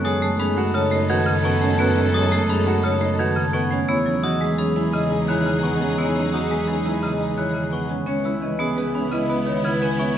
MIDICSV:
0, 0, Header, 1, 8, 480
1, 0, Start_track
1, 0, Tempo, 348837
1, 2470, Time_signature, 6, 2, 24, 8
1, 14006, End_track
2, 0, Start_track
2, 0, Title_t, "Glockenspiel"
2, 0, Program_c, 0, 9
2, 67, Note_on_c, 0, 87, 117
2, 380, Note_off_c, 0, 87, 0
2, 546, Note_on_c, 0, 83, 101
2, 860, Note_off_c, 0, 83, 0
2, 1030, Note_on_c, 0, 87, 82
2, 1342, Note_off_c, 0, 87, 0
2, 1509, Note_on_c, 0, 92, 117
2, 1821, Note_off_c, 0, 92, 0
2, 1994, Note_on_c, 0, 85, 85
2, 2303, Note_off_c, 0, 85, 0
2, 2476, Note_on_c, 0, 90, 87
2, 2784, Note_off_c, 0, 90, 0
2, 2949, Note_on_c, 0, 87, 124
2, 3261, Note_off_c, 0, 87, 0
2, 3438, Note_on_c, 0, 83, 87
2, 3744, Note_off_c, 0, 83, 0
2, 3918, Note_on_c, 0, 87, 84
2, 4225, Note_off_c, 0, 87, 0
2, 4394, Note_on_c, 0, 92, 110
2, 4703, Note_off_c, 0, 92, 0
2, 4871, Note_on_c, 0, 85, 82
2, 5182, Note_off_c, 0, 85, 0
2, 5346, Note_on_c, 0, 88, 88
2, 5660, Note_off_c, 0, 88, 0
2, 5828, Note_on_c, 0, 87, 109
2, 6141, Note_off_c, 0, 87, 0
2, 6307, Note_on_c, 0, 83, 73
2, 6620, Note_off_c, 0, 83, 0
2, 6791, Note_on_c, 0, 87, 75
2, 7102, Note_off_c, 0, 87, 0
2, 7269, Note_on_c, 0, 90, 105
2, 7581, Note_off_c, 0, 90, 0
2, 7749, Note_on_c, 0, 85, 75
2, 8061, Note_off_c, 0, 85, 0
2, 8230, Note_on_c, 0, 88, 72
2, 8542, Note_off_c, 0, 88, 0
2, 8716, Note_on_c, 0, 87, 89
2, 9024, Note_off_c, 0, 87, 0
2, 9192, Note_on_c, 0, 83, 63
2, 9502, Note_off_c, 0, 83, 0
2, 9669, Note_on_c, 0, 87, 61
2, 9981, Note_off_c, 0, 87, 0
2, 10151, Note_on_c, 0, 90, 89
2, 10462, Note_off_c, 0, 90, 0
2, 10634, Note_on_c, 0, 85, 67
2, 10943, Note_off_c, 0, 85, 0
2, 11356, Note_on_c, 0, 88, 78
2, 11664, Note_off_c, 0, 88, 0
2, 11832, Note_on_c, 0, 87, 96
2, 12142, Note_off_c, 0, 87, 0
2, 12315, Note_on_c, 0, 83, 85
2, 12623, Note_off_c, 0, 83, 0
2, 12792, Note_on_c, 0, 87, 71
2, 13102, Note_off_c, 0, 87, 0
2, 13270, Note_on_c, 0, 92, 96
2, 13582, Note_off_c, 0, 92, 0
2, 13751, Note_on_c, 0, 85, 89
2, 14006, Note_off_c, 0, 85, 0
2, 14006, End_track
3, 0, Start_track
3, 0, Title_t, "Vibraphone"
3, 0, Program_c, 1, 11
3, 51, Note_on_c, 1, 73, 84
3, 375, Note_off_c, 1, 73, 0
3, 542, Note_on_c, 1, 68, 92
3, 859, Note_off_c, 1, 68, 0
3, 1020, Note_on_c, 1, 73, 116
3, 1338, Note_off_c, 1, 73, 0
3, 1510, Note_on_c, 1, 71, 87
3, 1822, Note_off_c, 1, 71, 0
3, 1990, Note_on_c, 1, 78, 92
3, 2302, Note_off_c, 1, 78, 0
3, 2472, Note_on_c, 1, 71, 127
3, 2782, Note_off_c, 1, 71, 0
3, 2950, Note_on_c, 1, 73, 82
3, 3262, Note_off_c, 1, 73, 0
3, 3432, Note_on_c, 1, 68, 87
3, 3742, Note_off_c, 1, 68, 0
3, 3905, Note_on_c, 1, 73, 114
3, 4220, Note_off_c, 1, 73, 0
3, 4392, Note_on_c, 1, 71, 87
3, 4702, Note_off_c, 1, 71, 0
3, 4867, Note_on_c, 1, 78, 88
3, 5180, Note_off_c, 1, 78, 0
3, 5344, Note_on_c, 1, 73, 106
3, 5659, Note_off_c, 1, 73, 0
3, 5815, Note_on_c, 1, 75, 86
3, 6137, Note_off_c, 1, 75, 0
3, 6309, Note_on_c, 1, 68, 84
3, 6621, Note_off_c, 1, 68, 0
3, 6783, Note_on_c, 1, 75, 103
3, 7099, Note_off_c, 1, 75, 0
3, 7253, Note_on_c, 1, 73, 74
3, 7576, Note_off_c, 1, 73, 0
3, 7742, Note_on_c, 1, 78, 72
3, 8059, Note_off_c, 1, 78, 0
3, 8229, Note_on_c, 1, 73, 85
3, 8541, Note_off_c, 1, 73, 0
3, 8708, Note_on_c, 1, 75, 70
3, 9021, Note_off_c, 1, 75, 0
3, 9184, Note_on_c, 1, 68, 73
3, 9499, Note_off_c, 1, 68, 0
3, 9668, Note_on_c, 1, 75, 89
3, 9981, Note_off_c, 1, 75, 0
3, 10141, Note_on_c, 1, 73, 70
3, 10458, Note_off_c, 1, 73, 0
3, 10630, Note_on_c, 1, 78, 61
3, 10942, Note_off_c, 1, 78, 0
3, 11106, Note_on_c, 1, 73, 102
3, 11420, Note_off_c, 1, 73, 0
3, 11591, Note_on_c, 1, 75, 75
3, 11902, Note_off_c, 1, 75, 0
3, 12078, Note_on_c, 1, 68, 75
3, 12385, Note_off_c, 1, 68, 0
3, 12558, Note_on_c, 1, 75, 99
3, 12864, Note_off_c, 1, 75, 0
3, 13028, Note_on_c, 1, 73, 77
3, 13341, Note_off_c, 1, 73, 0
3, 13516, Note_on_c, 1, 80, 72
3, 13824, Note_off_c, 1, 80, 0
3, 14006, End_track
4, 0, Start_track
4, 0, Title_t, "Alto flute"
4, 0, Program_c, 2, 73
4, 0, Note_on_c, 2, 69, 100
4, 5049, Note_off_c, 2, 69, 0
4, 5348, Note_on_c, 2, 68, 86
4, 10814, Note_off_c, 2, 68, 0
4, 11113, Note_on_c, 2, 71, 80
4, 14006, Note_off_c, 2, 71, 0
4, 14006, End_track
5, 0, Start_track
5, 0, Title_t, "Grand piano"
5, 0, Program_c, 3, 0
5, 0, Note_on_c, 3, 61, 86
5, 72, Note_on_c, 3, 68, 122
5, 143, Note_off_c, 3, 61, 0
5, 312, Note_on_c, 3, 69, 94
5, 382, Note_off_c, 3, 68, 0
5, 548, Note_on_c, 3, 61, 91
5, 622, Note_off_c, 3, 69, 0
5, 787, Note_on_c, 3, 66, 120
5, 861, Note_off_c, 3, 61, 0
5, 1027, Note_on_c, 3, 69, 93
5, 1101, Note_off_c, 3, 66, 0
5, 1263, Note_on_c, 3, 63, 92
5, 1341, Note_off_c, 3, 69, 0
5, 1508, Note_on_c, 3, 66, 127
5, 1579, Note_off_c, 3, 63, 0
5, 1756, Note_on_c, 3, 69, 91
5, 1821, Note_off_c, 3, 66, 0
5, 1993, Note_on_c, 3, 71, 88
5, 2064, Note_off_c, 3, 69, 0
5, 2233, Note_on_c, 3, 61, 114
5, 2303, Note_off_c, 3, 71, 0
5, 2475, Note_on_c, 3, 66, 86
5, 2543, Note_off_c, 3, 61, 0
5, 2705, Note_on_c, 3, 61, 90
5, 2783, Note_off_c, 3, 66, 0
5, 2953, Note_on_c, 3, 68, 103
5, 3020, Note_off_c, 3, 61, 0
5, 3193, Note_on_c, 3, 69, 97
5, 3263, Note_off_c, 3, 68, 0
5, 3427, Note_on_c, 3, 61, 90
5, 3503, Note_off_c, 3, 69, 0
5, 3672, Note_on_c, 3, 66, 109
5, 3740, Note_off_c, 3, 61, 0
5, 3912, Note_on_c, 3, 69, 86
5, 3982, Note_off_c, 3, 66, 0
5, 4154, Note_on_c, 3, 63, 83
5, 4222, Note_off_c, 3, 69, 0
5, 4396, Note_on_c, 3, 66, 106
5, 4463, Note_off_c, 3, 63, 0
5, 4637, Note_on_c, 3, 69, 90
5, 4704, Note_off_c, 3, 66, 0
5, 4874, Note_on_c, 3, 71, 91
5, 4944, Note_off_c, 3, 69, 0
5, 5115, Note_on_c, 3, 61, 112
5, 5183, Note_off_c, 3, 71, 0
5, 5354, Note_on_c, 3, 64, 79
5, 5423, Note_off_c, 3, 61, 0
5, 5599, Note_on_c, 3, 61, 73
5, 5663, Note_off_c, 3, 64, 0
5, 5830, Note_on_c, 3, 66, 100
5, 5905, Note_off_c, 3, 61, 0
5, 6075, Note_on_c, 3, 68, 85
5, 6142, Note_off_c, 3, 66, 0
5, 6309, Note_on_c, 3, 61, 92
5, 6384, Note_off_c, 3, 68, 0
5, 6551, Note_on_c, 3, 64, 95
5, 6621, Note_off_c, 3, 61, 0
5, 6786, Note_on_c, 3, 68, 77
5, 6862, Note_off_c, 3, 64, 0
5, 7033, Note_on_c, 3, 63, 72
5, 7100, Note_off_c, 3, 68, 0
5, 7276, Note_on_c, 3, 64, 101
5, 7343, Note_off_c, 3, 63, 0
5, 7516, Note_on_c, 3, 68, 68
5, 7584, Note_off_c, 3, 64, 0
5, 7753, Note_on_c, 3, 71, 63
5, 7824, Note_off_c, 3, 68, 0
5, 7995, Note_on_c, 3, 61, 96
5, 8063, Note_off_c, 3, 71, 0
5, 8238, Note_on_c, 3, 64, 64
5, 8303, Note_off_c, 3, 61, 0
5, 8474, Note_on_c, 3, 61, 67
5, 8544, Note_off_c, 3, 64, 0
5, 8715, Note_on_c, 3, 66, 87
5, 8783, Note_off_c, 3, 61, 0
5, 8958, Note_on_c, 3, 68, 67
5, 9023, Note_off_c, 3, 66, 0
5, 9199, Note_on_c, 3, 61, 67
5, 9264, Note_off_c, 3, 68, 0
5, 9433, Note_on_c, 3, 64, 91
5, 9505, Note_off_c, 3, 61, 0
5, 9672, Note_on_c, 3, 68, 64
5, 9743, Note_off_c, 3, 64, 0
5, 9907, Note_on_c, 3, 63, 68
5, 9982, Note_off_c, 3, 68, 0
5, 10150, Note_on_c, 3, 64, 89
5, 10221, Note_off_c, 3, 63, 0
5, 10388, Note_on_c, 3, 68, 73
5, 10461, Note_off_c, 3, 64, 0
5, 10629, Note_on_c, 3, 71, 66
5, 10701, Note_off_c, 3, 68, 0
5, 10868, Note_on_c, 3, 61, 85
5, 10941, Note_off_c, 3, 71, 0
5, 11087, Note_off_c, 3, 61, 0
5, 11108, Note_on_c, 3, 61, 98
5, 11350, Note_on_c, 3, 64, 77
5, 11421, Note_off_c, 3, 61, 0
5, 11589, Note_on_c, 3, 61, 78
5, 11662, Note_off_c, 3, 64, 0
5, 11832, Note_on_c, 3, 68, 95
5, 11901, Note_off_c, 3, 61, 0
5, 12077, Note_on_c, 3, 71, 79
5, 12142, Note_off_c, 3, 68, 0
5, 12315, Note_on_c, 3, 61, 83
5, 12384, Note_off_c, 3, 71, 0
5, 12554, Note_on_c, 3, 64, 95
5, 12623, Note_off_c, 3, 61, 0
5, 12793, Note_on_c, 3, 71, 66
5, 12863, Note_off_c, 3, 64, 0
5, 13033, Note_on_c, 3, 63, 79
5, 13103, Note_off_c, 3, 71, 0
5, 13273, Note_on_c, 3, 64, 94
5, 13343, Note_off_c, 3, 63, 0
5, 13516, Note_on_c, 3, 71, 80
5, 13583, Note_off_c, 3, 64, 0
5, 13754, Note_on_c, 3, 73, 86
5, 13824, Note_off_c, 3, 71, 0
5, 14006, Note_off_c, 3, 73, 0
5, 14006, End_track
6, 0, Start_track
6, 0, Title_t, "Violin section"
6, 0, Program_c, 4, 48
6, 0, Note_on_c, 4, 63, 99
6, 0, Note_on_c, 4, 69, 96
6, 5050, Note_off_c, 4, 63, 0
6, 5051, Note_off_c, 4, 69, 0
6, 5347, Note_on_c, 4, 63, 94
6, 5349, Note_on_c, 4, 68, 93
6, 10813, Note_off_c, 4, 63, 0
6, 10814, Note_off_c, 4, 68, 0
6, 11107, Note_on_c, 4, 64, 80
6, 11112, Note_on_c, 4, 59, 84
6, 14006, Note_off_c, 4, 59, 0
6, 14006, Note_off_c, 4, 64, 0
6, 14006, End_track
7, 0, Start_track
7, 0, Title_t, "Marimba"
7, 0, Program_c, 5, 12
7, 0, Note_on_c, 5, 56, 82
7, 63, Note_on_c, 5, 54, 87
7, 140, Note_off_c, 5, 56, 0
7, 305, Note_on_c, 5, 57, 112
7, 379, Note_off_c, 5, 54, 0
7, 547, Note_on_c, 5, 56, 94
7, 620, Note_off_c, 5, 57, 0
7, 782, Note_on_c, 5, 57, 88
7, 860, Note_off_c, 5, 56, 0
7, 1025, Note_on_c, 5, 49, 115
7, 1099, Note_off_c, 5, 57, 0
7, 1257, Note_on_c, 5, 57, 97
7, 1340, Note_off_c, 5, 49, 0
7, 1503, Note_on_c, 5, 51, 95
7, 1577, Note_off_c, 5, 57, 0
7, 1737, Note_on_c, 5, 49, 126
7, 1819, Note_off_c, 5, 51, 0
7, 1982, Note_on_c, 5, 59, 94
7, 2057, Note_off_c, 5, 49, 0
7, 2224, Note_on_c, 5, 57, 90
7, 2299, Note_off_c, 5, 59, 0
7, 2459, Note_on_c, 5, 59, 119
7, 2540, Note_off_c, 5, 57, 0
7, 2708, Note_on_c, 5, 56, 83
7, 2778, Note_off_c, 5, 59, 0
7, 2946, Note_on_c, 5, 54, 89
7, 3021, Note_off_c, 5, 56, 0
7, 3192, Note_on_c, 5, 57, 116
7, 3260, Note_off_c, 5, 54, 0
7, 3428, Note_on_c, 5, 56, 90
7, 3502, Note_off_c, 5, 57, 0
7, 3668, Note_on_c, 5, 57, 86
7, 3741, Note_off_c, 5, 56, 0
7, 3903, Note_on_c, 5, 49, 107
7, 3981, Note_off_c, 5, 57, 0
7, 4145, Note_on_c, 5, 57, 89
7, 4219, Note_off_c, 5, 49, 0
7, 4391, Note_on_c, 5, 51, 90
7, 4460, Note_off_c, 5, 57, 0
7, 4628, Note_on_c, 5, 49, 122
7, 4702, Note_off_c, 5, 51, 0
7, 4862, Note_on_c, 5, 59, 95
7, 4941, Note_off_c, 5, 49, 0
7, 5102, Note_on_c, 5, 57, 84
7, 5179, Note_off_c, 5, 59, 0
7, 5348, Note_on_c, 5, 59, 113
7, 5419, Note_off_c, 5, 57, 0
7, 5586, Note_on_c, 5, 54, 78
7, 5661, Note_off_c, 5, 59, 0
7, 5826, Note_on_c, 5, 52, 89
7, 5900, Note_off_c, 5, 54, 0
7, 6067, Note_on_c, 5, 56, 110
7, 6140, Note_off_c, 5, 52, 0
7, 6304, Note_on_c, 5, 54, 80
7, 6381, Note_off_c, 5, 56, 0
7, 6554, Note_on_c, 5, 56, 69
7, 6619, Note_off_c, 5, 54, 0
7, 6786, Note_on_c, 5, 49, 106
7, 6863, Note_off_c, 5, 56, 0
7, 7035, Note_on_c, 5, 56, 82
7, 7100, Note_off_c, 5, 49, 0
7, 7279, Note_on_c, 5, 51, 73
7, 7343, Note_off_c, 5, 56, 0
7, 7513, Note_on_c, 5, 49, 91
7, 7585, Note_off_c, 5, 51, 0
7, 7756, Note_on_c, 5, 59, 76
7, 7823, Note_off_c, 5, 49, 0
7, 7992, Note_on_c, 5, 56, 65
7, 8064, Note_off_c, 5, 59, 0
7, 8234, Note_on_c, 5, 59, 93
7, 8302, Note_off_c, 5, 56, 0
7, 8475, Note_on_c, 5, 54, 66
7, 8543, Note_off_c, 5, 59, 0
7, 8713, Note_on_c, 5, 52, 63
7, 8784, Note_off_c, 5, 54, 0
7, 8956, Note_on_c, 5, 56, 90
7, 9023, Note_off_c, 5, 52, 0
7, 9188, Note_on_c, 5, 54, 68
7, 9264, Note_off_c, 5, 56, 0
7, 9429, Note_on_c, 5, 56, 72
7, 9501, Note_off_c, 5, 54, 0
7, 9672, Note_on_c, 5, 49, 89
7, 9741, Note_off_c, 5, 56, 0
7, 9914, Note_on_c, 5, 56, 70
7, 9982, Note_off_c, 5, 49, 0
7, 10144, Note_on_c, 5, 51, 65
7, 10223, Note_off_c, 5, 56, 0
7, 10379, Note_on_c, 5, 49, 88
7, 10459, Note_off_c, 5, 51, 0
7, 10617, Note_on_c, 5, 59, 66
7, 10698, Note_off_c, 5, 49, 0
7, 10858, Note_on_c, 5, 56, 63
7, 10937, Note_off_c, 5, 59, 0
7, 11095, Note_on_c, 5, 61, 99
7, 11178, Note_off_c, 5, 56, 0
7, 11341, Note_on_c, 5, 56, 79
7, 11416, Note_off_c, 5, 61, 0
7, 11571, Note_on_c, 5, 52, 75
7, 11659, Note_off_c, 5, 56, 0
7, 11818, Note_on_c, 5, 59, 105
7, 11895, Note_off_c, 5, 52, 0
7, 12063, Note_on_c, 5, 56, 77
7, 12138, Note_off_c, 5, 59, 0
7, 12301, Note_on_c, 5, 59, 77
7, 12379, Note_off_c, 5, 56, 0
7, 12544, Note_on_c, 5, 49, 95
7, 12618, Note_off_c, 5, 59, 0
7, 12789, Note_on_c, 5, 59, 77
7, 12859, Note_off_c, 5, 49, 0
7, 13028, Note_on_c, 5, 51, 79
7, 13101, Note_off_c, 5, 59, 0
7, 13277, Note_on_c, 5, 49, 95
7, 13341, Note_off_c, 5, 51, 0
7, 13518, Note_on_c, 5, 61, 84
7, 13584, Note_off_c, 5, 49, 0
7, 13754, Note_on_c, 5, 59, 78
7, 13824, Note_off_c, 5, 61, 0
7, 14006, Note_off_c, 5, 59, 0
7, 14006, End_track
8, 0, Start_track
8, 0, Title_t, "Cello"
8, 0, Program_c, 6, 42
8, 0, Note_on_c, 6, 42, 97
8, 5196, Note_off_c, 6, 42, 0
8, 5349, Note_on_c, 6, 40, 87
8, 10958, Note_off_c, 6, 40, 0
8, 11120, Note_on_c, 6, 37, 85
8, 14006, Note_off_c, 6, 37, 0
8, 14006, End_track
0, 0, End_of_file